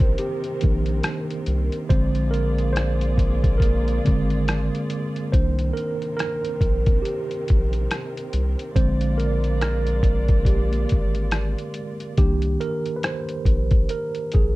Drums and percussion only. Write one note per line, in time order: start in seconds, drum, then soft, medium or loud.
0.00 kick loud
0.00 closed hi-hat soft
0.18 closed hi-hat medium
0.44 closed hi-hat soft
0.61 kick medium
0.61 closed hi-hat medium
0.86 closed hi-hat soft
1.03 cross-stick loud
1.03 closed hi-hat medium
1.30 closed hi-hat soft
1.46 closed hi-hat medium
1.72 closed hi-hat soft
1.90 kick loud
1.90 closed hi-hat medium
2.15 closed hi-hat soft
2.34 closed hi-hat medium
2.58 closed hi-hat soft
2.76 cross-stick loud
2.76 closed hi-hat medium
3.01 closed hi-hat medium
3.18 kick medium
3.18 closed hi-hat medium
3.44 kick medium
3.44 closed hi-hat soft
3.60 kick medium
3.60 closed hi-hat medium
3.88 closed hi-hat soft
4.06 kick medium
4.06 closed hi-hat medium
4.30 closed hi-hat soft
4.48 cross-stick loud
4.48 closed hi-hat medium
4.75 closed hi-hat soft
4.90 closed hi-hat medium
5.16 closed hi-hat soft
5.33 kick loud
5.33 closed hi-hat medium
5.59 closed hi-hat medium
5.77 closed hi-hat medium
6.02 closed hi-hat soft
6.19 cross-stick medium
6.19 closed hi-hat medium
6.45 closed hi-hat medium
6.61 kick medium
6.61 closed hi-hat medium
6.86 kick medium
6.86 closed hi-hat soft
7.05 closed hi-hat medium
7.31 closed hi-hat soft
7.48 kick medium
7.48 closed hi-hat medium
7.73 closed hi-hat soft
7.91 cross-stick loud
7.91 closed hi-hat medium
8.17 closed hi-hat medium
8.33 closed hi-hat medium
8.59 closed hi-hat soft
8.76 kick loud
8.76 closed hi-hat medium
9.01 closed hi-hat medium
9.20 closed hi-hat medium
9.44 closed hi-hat soft
9.61 cross-stick loud
9.61 closed hi-hat medium
9.87 closed hi-hat soft
10.03 kick medium
10.03 closed hi-hat medium
10.28 kick loud
10.28 closed hi-hat soft
10.45 kick medium
10.45 closed hi-hat medium
10.73 closed hi-hat soft
10.89 kick medium
10.89 closed hi-hat medium
11.15 closed hi-hat soft
11.31 cross-stick loud
11.31 closed hi-hat medium
11.58 closed hi-hat soft
11.74 closed hi-hat medium
12.00 closed hi-hat soft
12.17 kick loud
12.17 closed hi-hat medium
12.42 closed hi-hat medium
12.61 closed hi-hat medium
12.86 closed hi-hat soft
13.03 cross-stick loud
13.03 closed hi-hat medium
13.29 closed hi-hat medium
13.45 kick medium
13.45 closed hi-hat medium
13.71 kick loud
13.71 closed hi-hat soft
13.89 closed hi-hat medium
14.15 closed hi-hat soft
14.32 kick medium
14.32 closed hi-hat medium